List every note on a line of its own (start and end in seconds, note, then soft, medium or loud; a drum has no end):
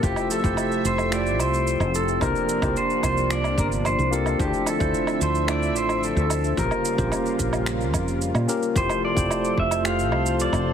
0.02 0.14 F1 medium
0.02 4.35 C3 medium
0.02 6.54 F3 medium
0.02 0.40 A3 medium
0.02 2.19 A3 medium
0.02 0.40 E4 medium
0.02 0.41 F4 medium
0.02 0.41 G4 medium
0.02 0.31 G4 medium
0.02 0.41 C5 medium
0.02 2.19 E5 loud
0.02 kick loud
0.02 shaker soft
0.16 low woodblock medium
0.16 shaker soft
0.31 0.87 A4 loud
0.31 shaker medium
0.42 0.55 F1 medium
0.42 1.08 A3 medium
0.42 1.08 E4 medium
0.42 1.09 F4 medium
0.42 1.09 G4 medium
0.42 1.10 C5 medium
0.42 kick loud
0.42 shaker soft
0.57 low woodblock medium
0.57 shaker soft
0.72 shaker soft
0.85 1.39 F1 medium
0.85 1.11 C5 loud
0.85 shaker medium
0.98 low woodblock medium
0.98 shaker soft
1.10 2.17 A3 medium
1.10 2.17 E4 medium
1.10 2.18 F4 medium
1.10 2.18 G4 medium
1.10 2.19 C5 medium
1.10 1.41 D5 loud
1.10 finger snap medium
1.10 shaker soft
1.26 shaker soft
1.39 1.76 C2 medium
1.39 1.96 C5 loud
1.39 low woodblock medium
1.39 shaker medium
1.54 shaker soft
1.67 shaker soft
1.80 2.17 F1 medium
1.80 low woodblock medium
1.80 shaker soft
1.95 2.22 A4 medium
1.95 shaker medium
2.08 shaker soft
2.20 2.32 C2 medium
2.20 2.58 A#3 medium
2.20 4.38 A#3 medium
2.20 2.59 D4 medium
2.20 4.37 D4 medium
2.20 2.59 F4 medium
2.20 2.59 G4 medium
2.20 2.78 A#4 loud
2.20 2.59 C5 medium
2.20 kick loud
2.20 low woodblock medium
2.20 shaker soft
2.36 shaker soft
2.49 shaker medium
2.60 2.73 C2 loud
2.60 4.08 A#3 medium
2.60 4.08 D4 medium
2.60 4.09 F4 medium
2.60 4.09 G4 medium
2.60 4.10 C5 medium
2.60 kick loud
2.60 low woodblock medium
2.60 shaker soft
2.77 3.03 C5 loud
2.77 shaker soft
2.90 shaker soft
3.03 3.59 C2 medium
3.03 3.32 C5 medium
3.03 kick medium
3.03 low woodblock medium
3.03 shaker medium
3.17 shaker soft
3.30 3.57 D5 loud
3.30 finger snap medium
3.30 shaker soft
3.44 low woodblock medium
3.44 shaker soft
3.58 3.94 G1 medium
3.58 3.66 A#4 medium
3.58 kick loud
3.58 shaker medium
3.72 shaker soft
3.85 4.14 C5 medium
3.85 low woodblock medium
3.85 shaker soft
3.98 4.35 C2 medium
3.98 shaker soft
4.11 4.36 A#3 medium
4.11 4.36 D4 medium
4.11 4.36 F4 medium
4.11 4.36 G4 medium
4.11 4.40 A4 medium
4.11 4.36 A#4 loud
4.11 shaker medium
4.26 low woodblock medium
4.26 shaker soft
4.38 4.51 D2 loud
4.38 6.56 D3 medium
4.38 4.77 A3 medium
4.38 6.56 C4 medium
4.38 4.77 D4 medium
4.38 4.77 E4 medium
4.38 4.77 F4 medium
4.38 4.68 G4 loud
4.38 4.77 C5 medium
4.38 6.56 E5 loud
4.38 kick loud
4.38 shaker soft
4.54 shaker soft
4.66 5.24 A4 loud
4.66 low woodblock medium
4.66 shaker medium
4.79 4.91 D2 medium
4.79 5.44 A3 medium
4.79 5.45 D4 medium
4.79 5.45 E4 medium
4.79 5.46 F4 medium
4.79 5.46 C5 medium
4.79 kick medium
4.79 shaker soft
4.94 shaker soft
5.07 low woodblock medium
5.07 shaker soft
5.21 5.75 D2 medium
5.21 5.50 C5 medium
5.21 shaker medium
5.35 shaker soft
5.47 6.53 A3 medium
5.47 6.54 D4 medium
5.47 6.54 E4 medium
5.47 6.55 F4 medium
5.47 6.55 C5 medium
5.47 5.77 D5 loud
5.47 finger snap medium
5.47 low woodblock medium
5.47 shaker soft
5.63 shaker soft
5.75 6.12 A1 medium
5.75 6.05 C5 medium
5.75 shaker medium
5.89 low woodblock medium
5.89 shaker soft
6.03 6.59 A4 medium
6.03 shaker soft
6.16 6.53 D2 medium
6.16 shaker soft
6.30 low woodblock medium
6.30 shaker medium
6.44 shaker soft
6.57 6.69 A#1 loud
6.57 8.74 C#3 medium
6.57 8.74 G3 medium
6.57 6.95 A#3 medium
6.57 8.74 A#3 medium
6.57 6.95 C#4 medium
6.57 6.95 F4 medium
6.57 8.74 F4 medium
6.57 6.95 G4 medium
6.57 8.18 A#4 medium
6.57 6.96 C5 medium
6.57 kick loud
6.57 shaker soft
6.71 low woodblock medium
6.71 shaker soft
6.85 shaker medium
6.97 7.09 A#1 loud
6.97 8.44 A#3 medium
6.97 8.45 C#4 medium
6.97 8.45 F4 medium
6.97 8.46 G4 medium
6.97 8.46 C5 medium
6.97 kick loud
6.97 shaker soft
7.12 low woodblock medium
7.12 shaker soft
7.26 shaker soft
7.39 7.94 A#1 medium
7.39 kick medium
7.39 shaker medium
7.53 low woodblock medium
7.53 shaker soft
7.66 finger snap medium
7.66 shaker soft
7.81 shaker soft
7.94 8.31 F2 medium
7.94 kick medium
7.94 low woodblock medium
7.94 shaker medium
8.08 shaker soft
8.22 shaker soft
8.34 8.46 A#2 medium
8.34 low woodblock medium
8.34 shaker soft
8.47 8.72 A#3 medium
8.47 8.72 C#4 medium
8.47 8.72 F4 medium
8.47 8.73 G4 medium
8.47 8.73 A#4 loud
8.47 shaker medium
8.63 shaker soft
8.75 8.87 F1 medium
8.75 10.73 C3 medium
8.75 10.73 F3 medium
8.75 9.13 A3 medium
8.75 9.13 E4 medium
8.75 9.13 F4 medium
8.75 9.14 G4 medium
8.75 10.73 A4 medium
8.75 10.73 C5 loud
8.75 9.14 C5 medium
8.75 9.04 C5 loud
8.75 kick loud
8.75 shaker medium
8.89 low woodblock medium
8.89 shaker soft
9.05 9.55 D5 loud
9.15 9.28 F1 loud
9.15 9.81 A3 medium
9.15 9.81 E4 medium
9.15 9.82 F4 medium
9.15 9.82 G4 medium
9.15 9.82 C5 medium
9.15 kick loud
9.15 shaker medium
9.31 low woodblock medium
9.31 shaker medium
9.45 shaker soft
9.58 10.12 F1 medium
9.58 9.84 E5 loud
9.58 kick medium
9.71 low woodblock medium
9.71 shaker medium
9.83 10.73 A3 medium
9.83 10.73 C4 medium
9.83 10.73 F4 medium
9.83 10.73 G4 medium
9.83 10.73 C5 medium
9.83 10.37 F5 loud
9.83 finger snap medium
9.83 shaker medium
9.99 shaker soft
10.12 10.49 C2 medium
10.12 low woodblock medium
10.26 shaker medium
10.40 10.73 D5 medium
10.40 shaker medium
10.53 10.73 F1 medium
10.53 low woodblock medium
10.53 shaker soft